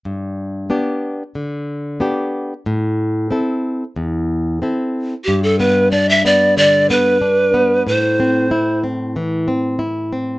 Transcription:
<<
  \new Staff \with { instrumentName = "Pan flute" } { \time 4/4 \key g \mixolydian \tempo 4 = 92 r1 | r1 | g'16 a'16 b'8 d''16 e''16 d''8 d''8 b'4. | c''4. r2 r8 | }
  \new Staff \with { instrumentName = "Nylon-string guitar" } { \time 4/4 \key g \mixolydian g,4 <b d' g'>4 d4 <b d' g'>4 | a,4 <c' e' a'>4 e,4 <c' e' a'>4 | g,8 b8 d'8 b8 d8 b8 d'8 b8 | a,8 c'8 e'8 c'8 e8 c'8 e'8 c'8 | }
>>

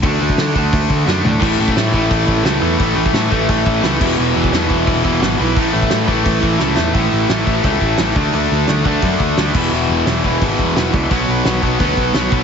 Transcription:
<<
  \new Staff \with { instrumentName = "Distorted electric guitar" } { \clef bass \time 4/4 \key e \mixolydian \tempo 4 = 174 <d a d'>4. <d a d'>4. <d a d'>4 | <a, e a>4. <a, e a>4. <a, e a>4 | <a, e a>4. <a, e a>4. <a, e a>8 <e, b, e>8~ | <e, b, e>4 <e, b, e>4. <e, b, e>4 r8 |
<a, e a>4. <a, e a>4. <a, e a>4 | <a, e a>4 <a, e a>8 <a, e a>8 <a, e a>4 <a, e a>8 <d a d'>8 | <d a d'>4 <d a d'>8 <d a d'>8 <d a d'>4 <d a d'>8 <e, b, e>8 | <e, b, e>4 <e, b, e>8 <e, b, e>8 <e, b, e>4 <e, b, e>8 <e, b, e>8 |
<b, fis b>4 <b, fis b>8 <b, fis b>8 <b, fis b>4 <b, fis b>8 <b, fis b>8 | }
  \new Staff \with { instrumentName = "Distorted electric guitar" } { \clef bass \time 4/4 \key e \mixolydian r1 | <a, e a>8 <a, e a>8 <a, e a>8 <a, e a>8 <a, e a>8 <a, e a>8 <a, e a>8 <a, e a>8 | <a, e a>8 <a, e a>8 <a, e a>8 <a, e a>8 <a, e a>8 <a, e a>8 <a, e a>8 <e, b, e>8 | <e, b, e>8 <e, b, e>8 <e, b, e>8 <e, b, e>8 <e, b, e>8 <e, b, e>8 <e, b, e>8 <e, b, e>8 |
<a, e a>8 <a, e a>8 <a, e a>8 <a, e a>8 <a, e a>8 <a, e a>8 <a, e a>8 <a, e a>8 | <a, e a>2 <a, e a>4. <d a d'>8~ | <d a d'>4. <d a d'>2 <e, b, e>8~ | <e, b, e>4. <e, b, e>2 r8 |
<b, fis b>2 <b, fis b>2 | }
  \new Staff \with { instrumentName = "Picked electric bass" } { \clef bass \time 4/4 \key e \mixolydian d,8 d,8 d8 d,8 d,8 d,8 fis,8 a,8 | a,,8 a,,8 a,8 a,,8 a,,8 a,,8 cis,8 e,8 | a,,8 a,,8 a,8 a,,8 a,,8 a,,8 cis,8 e,,8 | e,,8 e,,8 e,8 e,,8 e,,8 e,,8 gis,,8 b,,8 |
a,,8 a,,8 a,8 a,,8 a,,8 a,,8 cis,8 e,8 | a,,8 a,,8 a,,8 a,,8 cis,8 a,,8 a,,8 d,8 | d,8 d,8 d,8 d,8 fis,8 d,8 d,8 e,,8 | e,,8 e,,8 e,,8 e,,8 gis,,8 e,,8 e,,8 cis,8 |
b,,8 b,,8 b,,8 b,,8 d,8 b,,8 b,,8 b,,8 | }
  \new DrumStaff \with { instrumentName = "Drums" } \drummode { \time 4/4 <hho bd>8. bd16 <hho sn>8 bd8 <hho bd>8 bd8 sn8 tomfh8 | <cymc bd>8. bd16 <hho sn>8 bd8 <hho bd>8 bd8 <hho sn>4 | <hho bd>8. bd16 <hho sn>8 bd8 <hho bd>8 bd8 <hho sn>8 <cymc bd>8 | r8. bd16 <hho sn>8 bd8 <hho bd>8 bd8 <hho sn>4 |
<hho bd>8. bd16 <hho sn>8 bd8 <hho bd>8 bd8 sn8 sn8 | <hho bd>4 <hho sn>8 bd8 <hho bd>8 bd8 <hho sn>8 bd8 | hho4 <hho sn>8 bd8 <hho bd>8 bd8 <hho sn>8 <cymc bd>8 | r4 <hho sn>8 bd8 <hho bd>8 bd8 <hho sn>8 bd8 |
<hho bd>4 <hho sn>8 bd8 <hho bd>8 bd8 <hho sn>8 bd8 | }
>>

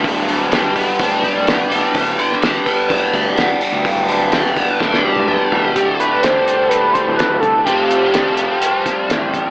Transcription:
<<
  \new Staff \with { instrumentName = "Harmonium" } { \time 4/4 \key g \major \tempo 4 = 126 << { <d' a''>1~ | <d' a''>1~ | <d' a''>1 | <g' a''>1~ |
<g' a''>1 | } \\ { <b' g''>1~ | <b' g''>1~ | <b' g''>1 | <a' d''>1 |
<c'' f''>1 | } >> }
  \new Staff \with { instrumentName = "Analog synth lead" } { \time 4/4 \key g \major r1 | r1 | r1 | g'8 b'8 c''4 b'8 c''8 b'8 a'8 |
g'2 r2 | }
  \new Staff \with { instrumentName = "Overdriven electric guitar" } { \clef bass \time 4/4 \key g \major <g, g b d'>8 d8 g8 b8 d'8 g8 b8 g8 | g,8 d8 g8 b8 d'8 g8 b8 g8 | g,8 d8 g8 b8 d'8 g8 b8 g8 | <d, a, d g>1 |
<f, c f g c' f'>1 | }
  \new Staff \with { instrumentName = "Fingered electric bass" } { \clef bass \time 4/4 \key g \major d,,2 d,,8. d,,8 r16 d,,16 r16 | d,,8 r4. d,,8 d,16 d,,8 r8 d,16 | d,,2 d,,8. d,,8 r16 d,,16 r16 | d,,8 r2 r16 d,,8. c,16 r16 |
f,,2 r4 a,,8. g,,16 | }
  \new DrumStaff \with { instrumentName = "Drums" } \drummode { \time 4/4 <hho bd>8 hho8 <hho sn>8 <hho bd>8 <hho bd>8 <hho bd>8 <hho sn>8 hho8 | <hho bd>8 hho16 sn16 <hho sn>16 sn16 <hho bd>8 <hho bd>8 <hho bd>8 <hho sn>8 hho8 | <hho bd>8 hho8 <hho sn>16 sn16 <hho bd>8 <bd sn>16 sn8 tommh16 toml8 tomfh16 tomfh16 | <hh bd>8 hh8 <hh sn>8 hh8 hh8 <hh bd>8 <hh sn>8 <hh bd>8 |
<hh bd>8 hh8 <hh sn>8 hh8 hh8 <hh bd sn>8 <hh sn>8 <hh bd>8 | }
>>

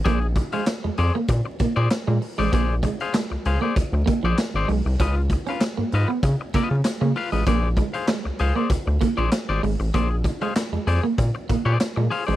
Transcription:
<<
  \new Staff \with { instrumentName = "Clean electric guitar" } { \time 4/4 \key bes \mixolydian \tempo 4 = 97 <aes' c'' d''>16 r8 <aes' c'' f''>16 r8 <aes' c'' d''>16 r4 <aes' c'' d''>16 r8. <aes' c'' d''>16 | <aes' c'' d''>16 r8 <aes' c'' f''>16 r8 <aes' c'' f''>16 <aes' c'' d''>16 r8. <aes' c'' d''>16 r16 <aes' c'' d''>16 r8 | <f' ces'' ees''>16 r8 <f' ces'' f''>16 r8 <f' ces'' ees''>16 r8. <f' ces'' ees''>16 r8. <f' ces'' f''>16 <f' ces'' ees''>16 | <aes' c'' d''>16 r8 <aes' c'' f''>16 r8 <aes' c'' f''>16 <aes' c'' d''>16 r8. <aes' c'' d''>16 r16 <aes' c'' d''>16 r8 |
<aes' c'' d''>16 r8 <aes' c'' f''>16 r8 <aes' c'' d''>16 r4 <aes' c'' d''>16 r8 <aes' c'' f''>16 <aes' c'' d''>16 | }
  \new Staff \with { instrumentName = "Clean electric guitar" } { \time 4/4 \key bes \mixolydian bes16 r8 aes16 r16 aes16 r16 bes16 r8 bes16 r8 aes16 r16 aes16 | bes16 r16 aes16 r16 aes16 r8 bes16 r8 bes16 f16 r8 aes16 r16 | des'16 r8 des'16 r16 bes16 r16 ces'16 r8 bes16 r8 bes16 r16 aes16 | bes16 r16 aes16 r16 aes16 r8 bes16 r8 bes16 f16 r8 aes16 r16 |
bes16 r8 aes16 r16 aes16 r16 bes16 r8 bes16 r8 aes16 r16 aes16 | }
  \new Staff \with { instrumentName = "Analog synth bass" } { \clef bass \time 4/4 \key bes \mixolydian bes,,8. r8 f,16 f,16 r16 bes,16 r16 bes,16 bes,16 r16 bes,16 r16 a,,16 | bes,,8. r8 des,16 des,16 r16 d,16 d,16 r16 bes,,16 r16 aes,,16 ces,16 c,16 | des,8. r8 aes,16 aes,16 r16 des16 r16 des16 des16 r16 des16 r16 a,,16 | bes,,8. r8 des,16 des,16 r16 d,16 d,16 r16 bes,,16 r16 aes,,16 aes,,16 a,,16 |
bes,,8. r8 f,16 f,16 r16 bes,16 r16 bes,16 bes,16 r16 bes,16 r16 a,,16 | }
  \new DrumStaff \with { instrumentName = "Drums" } \drummode { \time 4/4 <hh bd>8 <hh bd>16 hh16 <hc hh sn>8 hh8 <hh bd>8 <hh bd>8 <hc hh sn>8 hho16 hh16 | <hh bd>8 <hh bd>16 hh16 <hc hh sn>8 hh8 <hh bd>8 <hh bd>8 <hc hh sn>8 hho8 | <hh bd>8 <hh bd>16 hh16 <hc hh sn>8 hh8 <hh bd>8 <hh bd>8 <hc hh sn>8 hho16 hh16 | <hh bd>8 <hh bd>16 hh16 <hc hh sn>8 hh8 <hh bd>8 <hh bd>8 <hc hh sn>8 hho16 hh16 |
<hh bd>8 <hh bd>16 hh16 <hc hh sn>8 hh8 <hh bd>8 <hh bd>8 <hc hh sn>8 hho16 hh16 | }
>>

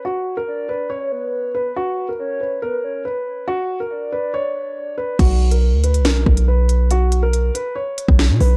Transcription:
<<
  \new Staff \with { instrumentName = "Soft synth lead" } { \time 4/4 \key b \minor \tempo 4 = 140 r4 d''4 cis''8 b'4. | r4 cis''4 b'8 cis''8 r4 | r4 d''2. | r1 |
r1 | }
  \new Staff \with { instrumentName = "Grand piano" } { \time 4/4 \key b \minor fis'8. ais'8. b'8 cis''4. b'8 | fis'8. ais'8. b'8 ais'4 b'4 | fis'8. ais'8. b'8 cis''4. b'8 | fis'8. ais'8. b'8 ais'4 b'4 |
fis'8. ais'8. b'8 cis''4. b'8 | }
  \new Staff \with { instrumentName = "808-style bass" } { \clef bass \time 4/4 \key b \minor r1 | r1 | r1 | b,,4~ b,,16 d,8~ d,32 b,,8~ b,,32 b,,4.~ |
b,,4. r4 r16 b,,8 b,16 b,,8 | }
  \new DrumStaff \with { instrumentName = "Drums" } \drummode { \time 4/4 r4 r4 r4 r4 | r4 r4 r4 r4 | r4 r4 r4 r4 | <cymc hh bd>8. hh16 r8 hh16 hh16 <hh sn>8 bd16 hh16 r8 hh8 |
hh8 hh8 hh8 hh8 r8 hh16 bd16 sn8 hho8 | }
>>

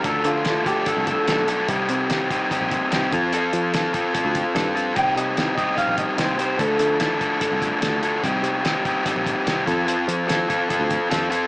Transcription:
<<
  \new Staff \with { instrumentName = "Clean electric guitar" } { \time 4/4 \key c \dorian \tempo 4 = 147 a'8 f'4 g'8 a'8 a'4 r8 | r1 | r1 | g''8 ees''4 ees''8 f''8 ees''8 c''8 c''8 |
a'4. r2 r8 | r1 | r1 | }
  \new Staff \with { instrumentName = "Overdriven electric guitar" } { \time 4/4 \key c \dorian <f a d' a'>4 <f a d' a'>8 <f a d' a'>8 <f a d' a'>4 <f a d' a'>8 <f a d' a'>8 | <g c' ees' g'>4 <g c' ees' g'>8 <g c' ees' g'>8 <g c' ees' g'>4 <g c' ees' g'>8 <f c' f' a'>8 | <f c' f' a'>4 <f c' f' a'>8 <f c' f' a'>8 <f c' f' a'>4 <f c' f' a'>8 <f c' f' a'>8 | <g c' ees' g'>4 <g c' ees' g'>8 <g c' ees' g'>8 <g c' ees' g'>4 <g c' ees' g'>8 <g c' ees' g'>8 |
<f a d' a'>4 <f a d' a'>8 <f a d' a'>8 <f a d' a'>4 <f a d' a'>8 <f a d' a'>8 | <g c' ees' g'>4 <g c' ees' g'>8 <g c' ees' g'>8 <g c' ees' g'>4 <g c' ees' g'>8 <f c' f' a'>8 | <f c' f' a'>4 <f c' f' a'>8 <f c' f' a'>8 <f c' f' a'>4 <f c' f' a'>8 <f c' f' a'>8 | }
  \new Staff \with { instrumentName = "Picked electric bass" } { \clef bass \time 4/4 \key c \dorian d,8 d4.~ d16 c,8 r16 b,,4 | c,8 c4.~ c16 bes,,8 r16 c,8 f,8~ | f,8 f4.~ f16 d,8 r16 g,4 | c,8 c4.~ c16 bes,,8 r16 c,4 |
d,8 d4.~ d16 c,8 r16 d,4 | c,8 c4.~ c16 bes,,8 r16 c,8 f,8~ | f,8 f4.~ f16 d,8 r16 f,4 | }
  \new DrumStaff \with { instrumentName = "Drums" } \drummode { \time 4/4 <hh bd>8 hh8 <hh sn>8 <hh bd>8 <hh bd>8 <hh bd>8 <hh sn>8 hh8 | <hh bd>8 hh8 <hh sn>8 <hh bd>8 <hh bd>8 <hh bd>8 <hh sn>8 <hh bd>8 | hh8 hh8 <hh sn>8 <hh bd>8 <hh bd>8 <hh bd>8 <hh sn>8 hh8 | <hh bd>8 hh8 <hh sn>8 <hh bd>8 <hh bd>8 <hh bd>8 <hh sn>8 hh8 |
<hh bd>8 hh8 <hh sn>8 <hh bd>8 <hh bd>8 <hh bd>8 <hh sn>8 hh8 | <hh bd>8 hh8 <hh sn>8 <hh bd>8 <hh bd>8 <hh bd>8 <hh sn>8 <hh bd>8 | hh8 hh8 <hh sn>8 <hh bd>8 <hh bd>8 <hh bd>8 <hh sn>8 hh8 | }
>>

